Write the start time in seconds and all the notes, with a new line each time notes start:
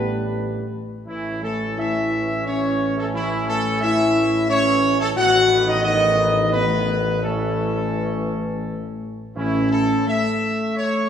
Already playing: A1 G3 B3 D4 B4
1.07 A1 E3 C#4 E4
1.43 A3 A4
1.78 E4 E5
2.46 C#4 C#5
2.97 A3 A4
3.14 E3 E4
3.48 A3 A4
3.81 E4 E5
4.49 C#4 C#5
5.00 A3 A4
5.16 A1 D#3 B3 F#4 F#5
5.67 D#4 D#5
5.83 D#4 D#5
6.51 B3 B4
7.21 E3 A3 C#4 A4
9.36 A1 E3 C#4 E4
9.71 A4
10.07 A3 E5
10.76 C#5